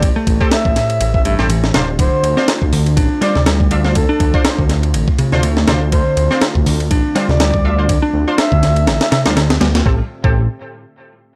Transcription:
0.00 0.12 A1 loud
0.00 9.82 A3 medium
0.00 1.70 E4 medium
0.00 1.70 G4 medium
0.00 1.70 C5 medium
0.00 0.11 D5 loud
0.00 kick loud
0.00 ride medium
0.16 0.64 A3 loud
0.27 0.38 A1 loud
0.27 kick loud
0.27 ride medium
0.40 1.36 C4 loud
0.40 1.36 G4 medium
0.40 1.36 A4 loud
0.40 kick loud
0.51 1.12 E5 medium
0.51 snare loud
0.51 ride medium
0.65 0.74 A1 loud
0.65 1.13 A2 medium
0.65 kick medium
0.76 snare soft
0.76 ride medium
0.90 ride soft
1.01 1.35 A1 loud
1.01 ride medium
1.14 1.21 E5 medium
1.14 kick medium
1.25 1.49 G2 loud
1.25 1.34 E5 medium
1.25 ride medium
1.39 1.71 A1 medium
1.39 1.48 C4 loud
1.39 1.48 G4 loud
1.39 1.48 A4 loud
1.39 snare soft
1.50 1.73 E3 medium
1.50 ride medium
1.64 snare medium
1.74 2.09 D1 medium
1.74 1.81 C3 medium
1.74 9.82 D3 medium
1.74 9.82 C4 medium
1.74 1.92 D4 loud
1.74 9.82 F4 medium
1.74 1.92 F4 medium
1.74 1.92 C5 loud
1.74 snare loud
1.74 ride medium
1.99 2.36 D3 medium
1.99 2.48 C5 loud
1.99 kick loud
1.99 ride medium
2.23 2.35 D2 loud
2.23 ride medium
2.37 2.46 C4 loud
2.37 3.19 D4 medium
2.37 3.19 F4 medium
2.37 3.19 C5 loud
2.37 snare soft
2.48 snare loud
2.48 ride medium
2.62 2.99 D2 medium
2.62 kick medium
2.73 2.96 D3 medium
2.73 open hi-hat medium
2.86 ride soft
2.97 3.09 A1 medium
2.97 3.21 D4 medium
2.97 kick loud
2.97 ride medium
3.21 3.34 G3 loud
3.21 3.33 D4 loud
3.21 3.33 F4 medium
3.21 3.33 C5 loud
3.21 3.41 D5 medium
3.21 snare soft
3.21 ride medium
3.35 3.68 D2 medium
3.35 3.44 C3 loud
3.35 snare soft
3.46 3.94 G3 medium
3.46 snare loud
3.46 ride medium
3.60 kick loud
3.71 4.06 D2 loud
3.71 3.82 D4 medium
3.71 3.82 F4 medium
3.71 3.82 E5 medium
3.71 ride medium
3.84 3.94 D4 medium
3.84 3.94 F4 medium
3.84 3.94 C5 medium
3.84 snare soft
3.95 4.34 A4 loud
3.95 kick loud
3.95 ride medium
4.09 4.57 D4 loud
4.20 4.32 D2 loud
4.20 kick loud
4.20 ride medium
4.34 5.29 D4 loud
4.34 5.29 F4 medium
4.34 5.29 C5 loud
4.34 kick loud
4.45 snare loud
4.45 ride medium
4.58 4.95 D2 medium
4.58 5.06 D3 medium
4.58 kick loud
4.69 snare soft
4.69 ride medium
4.83 ride soft
4.94 5.05 A1 medium
4.94 ride medium
5.08 kick loud
5.18 5.42 C3 loud
5.18 ride medium
5.32 5.65 D2 medium
5.32 5.42 D4 loud
5.32 5.41 F4 loud
5.32 5.42 C5 loud
5.32 snare soft
5.43 5.67 A3 medium
5.43 ride medium
5.57 snare medium
5.68 6.02 D2 loud
5.68 5.74 C3 medium
5.68 5.85 D4 loud
5.68 5.85 F4 medium
5.68 5.85 C5 loud
5.68 snare loud
5.68 ride medium
5.92 6.29 D3 medium
5.92 6.41 C5 loud
5.92 kick loud
5.92 ride medium
6.17 6.28 D2 loud
6.17 ride medium
6.31 6.39 C4 loud
6.31 7.13 D4 loud
6.31 7.13 F4 medium
6.31 7.13 C5 loud
6.31 snare soft
6.41 snare loud
6.41 ride medium
6.55 6.92 D2 medium
6.55 kick loud
6.66 6.90 D3 medium
6.66 open hi-hat medium
6.80 ride soft
6.91 7.02 A1 medium
6.91 7.14 D4 medium
6.91 kick loud
6.91 ride medium
7.15 7.28 G3 loud
7.15 7.27 D4 loud
7.15 7.27 F4 medium
7.15 7.27 C5 loud
7.15 snare soft
7.15 ride medium
7.29 7.61 D2 medium
7.29 7.38 C3 loud
7.29 7.98 D5 loud
7.29 snare soft
7.40 7.88 G3 medium
7.40 snare loud
7.40 ride medium
7.54 kick loud
7.64 7.99 D2 loud
7.64 7.76 D4 medium
7.64 7.76 F4 medium
7.64 7.76 E5 medium
7.78 7.87 D4 medium
7.78 7.87 F4 medium
7.78 7.87 C5 medium
7.89 kick loud
7.89 ride medium
8.02 8.51 D4 loud
8.14 8.25 D2 loud
8.27 9.23 D4 loud
8.27 9.23 F4 medium
8.27 9.23 C5 loud
8.38 8.99 E5 loud
8.38 snare loud
8.38 ride medium
8.52 8.89 D2 medium
8.52 9.00 D3 medium
8.52 kick medium
8.63 snare soft
8.63 ride medium
8.76 ride soft
8.87 8.99 A1 medium
8.87 snare loud
8.87 ride medium
9.01 9.08 E5 medium
9.01 snare loud
9.01 ride medium
9.12 9.23 C3 loud
9.12 9.21 E5 medium
9.12 snare loud
9.12 ride medium
9.26 9.59 D2 medium
9.26 9.34 G3 medium
9.26 9.35 D4 loud
9.26 9.35 F4 medium
9.26 9.35 C5 loud
9.26 snare loud
9.26 ride medium
9.36 9.47 D3 medium
9.36 snare loud
9.36 ride medium
9.50 snare loud
9.50 ride medium
9.61 9.82 D2 loud
9.61 9.67 G3 loud
9.61 snare loud
9.61 ride medium
9.75 snare loud
9.75 ride medium
9.85 10.01 A1 loud
9.85 10.00 A2 medium
9.85 10.01 C4 medium
9.85 10.01 G4 medium
9.85 10.01 A4 loud
9.85 kick loud
10.24 10.47 A1 loud
10.24 10.47 A2 medium
10.24 10.42 C4 medium
10.24 10.42 G4 medium
10.24 10.42 A4 medium
10.24 kick loud

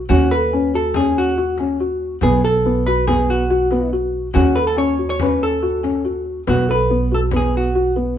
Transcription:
0.09 2.19 D#2 medium
0.09 0.27 C#4 loud
0.09 0.32 F#4 loud
0.09 frame drum medium
0.31 0.48 A4 medium
0.31 0.75 B4 loud
0.52 0.70 C#4 medium
0.52 frame drum soft
0.74 0.91 F#4 medium
0.74 0.96 A4 medium
0.94 1.29 C#4 medium
0.94 1.18 G#4 loud
0.94 frame drum medium
1.16 1.57 F#4 medium
1.16 frame drum soft
1.38 1.55 F#4 medium
1.58 1.76 C#4 medium
1.58 frame drum soft
1.80 2.14 F#4 medium
2.21 4.31 B1 medium
2.21 2.40 B3 loud
2.21 2.43 G#4 loud
2.21 frame drum medium
2.44 2.61 A4 medium
2.44 2.84 A4 medium
2.65 2.82 B3 medium
2.65 frame drum soft
2.87 3.04 F#4 medium
2.87 3.06 B4 loud
3.07 3.42 B3 medium
3.07 3.30 G#4 loud
3.07 frame drum medium
3.28 3.89 F#4 medium
3.28 frame drum soft
3.50 3.67 F#4 loud
3.71 3.88 B3 medium
3.71 frame drum soft
3.93 4.27 F#4 medium
4.34 6.44 D#2 medium
4.34 4.52 C#4 loud
4.34 4.57 F#4 loud
4.34 frame drum medium
4.55 4.73 A4 medium
4.55 4.67 B4 medium
4.67 4.78 A4 medium
4.77 4.94 C#4 medium
4.77 5.08 C#5 loud
4.99 5.16 F#4 medium
5.10 5.22 C#5 loud
5.19 5.54 C#4 medium
5.19 5.43 B4 loud
5.19 frame drum medium
5.42 6.23 A4 loud
5.42 frame drum soft
5.63 5.80 F#4 medium
5.83 6.00 C#4 medium
5.83 frame drum soft
6.05 6.39 F#4 medium
6.47 8.18 B1 medium
6.47 6.64 B3 medium
6.47 6.70 F#4 medium
6.47 frame drum medium
6.69 6.86 A4 medium
6.69 7.14 B4 medium
6.90 7.07 B3 medium
6.90 frame drum soft
7.12 7.28 F#4 medium
7.12 7.20 A4 medium
7.31 7.67 B3 medium
7.31 frame drum medium
7.36 7.56 G#4 medium
7.53 frame drum soft
7.57 7.95 F#4 medium
7.75 7.92 F#4 medium
7.96 8.13 B3 medium

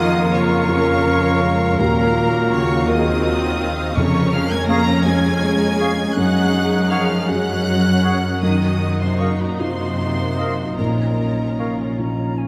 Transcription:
0.00 1.74 F2 medium
0.00 1.75 F2 medium
0.00 0.32 D#3 medium
0.00 0.68 A#3 medium
0.00 1.78 A#3 medium
0.00 1.48 F4 medium
0.00 3.80 F4 medium
0.00 2.87 A#4 medium
0.00 3.96 A#4 medium
0.00 0.31 D#5 loud
0.00 3.97 F5 medium
0.00 0.31 D#6 loud
0.32 1.79 C#3 medium
0.32 1.76 C#5 medium
0.32 1.79 C#6 loud
0.69 1.04 C#4 medium
0.69 1.75 F4 medium
0.69 1.75 A#4 medium
1.05 1.41 C#4 medium
1.43 1.79 G#3 medium
1.78 3.97 D#2 medium
1.78 3.93 D#2 medium
1.78 2.50 A#2 medium
1.78 3.80 F#3 medium
1.78 2.88 A#3 medium
1.78 3.93 F#4 medium
1.78 2.51 A#4 medium
1.78 2.51 A#5 loud
2.52 2.88 C#3 medium
2.52 2.87 C#5 medium
2.52 2.88 C#6 loud
2.88 3.97 D#3 medium
2.88 3.97 C4 medium
2.88 3.24 G#4 medium
2.88 3.93 A#4 medium
2.88 3.97 D#5 medium
2.88 3.93 F5 medium
2.88 3.98 D#6 loud
3.24 3.61 F#4 medium
3.61 3.97 F5 medium
3.97 6.16 F2 medium
3.97 6.12 F2 medium
3.97 5.02 F2 loud
3.97 4.32 C#3 medium
3.97 8.38 G#3 medium
3.97 8.38 C#4 medium
3.97 6.17 C#4 medium
3.97 5.06 A#4 medium
3.97 4.33 C#5 medium
3.97 4.33 C#6 loud
4.34 4.51 F3 medium
4.34 4.51 F5 medium
4.34 4.52 F6 loud
4.50 4.69 G#3 medium
4.50 4.69 G#5 medium
4.50 4.69 G#6 loud
4.69 5.06 A#3 medium
4.69 4.82 G#4 medium
4.69 4.82 C#5 medium
4.69 4.86 F5 medium
4.69 5.05 A#5 medium
4.69 5.05 A#6 loud
5.05 6.17 G#3 medium
5.05 6.12 C#4 medium
5.05 6.12 G#4 medium
5.05 6.15 G#4 medium
5.05 6.16 G#5 medium
5.05 6.17 G#6 loud
5.80 5.92 G#4 medium
5.80 5.93 C#5 medium
5.80 5.97 F5 medium
6.16 10.78 F#2 medium
6.16 8.39 F#2 medium
6.16 6.89 F#3 medium
6.16 7.26 D#4 medium
6.16 7.26 G#4 medium
6.16 6.89 F#5 medium
6.16 6.90 F#6 loud
6.90 7.28 F3 medium
6.90 7.04 G#4 medium
6.90 7.04 C#5 medium
6.90 7.28 F5 medium
6.90 7.08 F#5 medium
6.90 7.28 F6 medium
7.28 8.43 F#3 medium
7.28 8.42 C#4 medium
7.28 8.38 C#4 soft
7.28 8.41 F#4 medium
7.28 8.39 G#4 medium
7.28 8.42 F#5 medium
7.28 8.43 F#6 loud
8.04 8.18 G#4 medium
8.04 8.17 C#5 medium
8.04 8.22 F#5 medium
8.43 10.75 F#2 medium
8.43 8.99 D#3 medium
8.43 10.74 A#3 medium
8.43 10.74 D#4 medium
8.43 12.48 D#4 medium
8.43 10.74 F#4 medium
8.43 8.99 D#5 medium
8.43 8.99 D#6 medium
9.00 9.19 C3 medium
9.00 9.20 C5 medium
9.00 9.21 C6 medium
9.20 9.39 C#3 medium
9.20 9.34 A#4 medium
9.20 9.39 C#5 medium
9.20 9.33 D#5 medium
9.20 9.38 F5 medium
9.20 9.39 C#6 medium
9.39 9.59 A#2 medium
9.39 9.59 A#4 medium
9.39 9.60 A#5 medium
9.59 10.79 C3 medium
9.59 10.75 D#4 soft
9.59 10.75 F4 soft
9.59 10.78 C5 medium
9.59 10.79 C6 medium
10.38 10.53 A#4 medium
10.38 10.52 D#5 medium
10.38 10.57 F5 medium
10.78 12.48 A#1 medium
10.78 12.48 A#2 soft
10.78 11.98 A#2 medium
10.78 11.95 A#2 medium
10.78 12.48 C#4 medium
10.78 12.48 F4 soft
10.78 11.96 A#4 medium
10.78 11.96 A#5 medium
11.59 11.73 A#4 soft
11.59 11.73 C#5 soft
11.59 11.77 F5 soft
11.98 12.48 F3 soft
11.98 12.48 C#4 soft
11.98 12.39 A#5 medium
12.38 12.48 G#5 medium

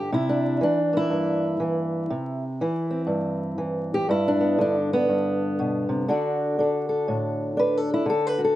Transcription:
0.00 0.11 D3 medium
0.00 0.46 G3 soft
0.00 0.11 G4 medium
0.12 0.61 C3 medium
0.12 0.78 E4 medium
0.29 0.61 D4 medium
0.61 1.58 E3 medium
0.61 1.44 D4 medium
0.93 2.08 A#3 soft
0.93 2.44 E4 loud
1.10 2.07 G2 medium
1.60 2.07 E3 medium
2.10 2.59 C3 medium
2.61 3.57 E3 medium
2.61 3.93 E4 soft
2.91 4.06 C4 soft
3.07 4.05 G2 medium
3.58 4.06 E3 medium
3.94 4.09 G4 medium
4.09 5.08 G2 medium
4.09 4.76 E4 medium
4.28 4.59 D4 medium
4.41 4.92 B3 soft
4.58 6.07 D3 medium
4.58 4.93 D4 medium
4.93 6.08 B3 loud
5.09 6.06 G2 medium
5.59 5.89 B2 medium
5.89 6.08 C3 medium
6.08 8.04 D3 medium
6.08 6.58 D4 medium
6.08 8.06 F#4 medium
6.08 6.60 A4 soft
6.59 7.56 D4 medium
6.59 6.88 A4 medium
6.89 7.57 A4 soft
7.08 8.05 A2 medium
7.57 8.05 D4 medium
7.57 7.77 B4 medium
7.77 7.92 A4 medium
7.94 8.09 E4 medium
8.06 8.56 D3 medium
8.06 8.27 A4 medium
8.27 8.42 B4 loud
8.38 8.56 F#4 soft
8.44 8.56 A4 medium

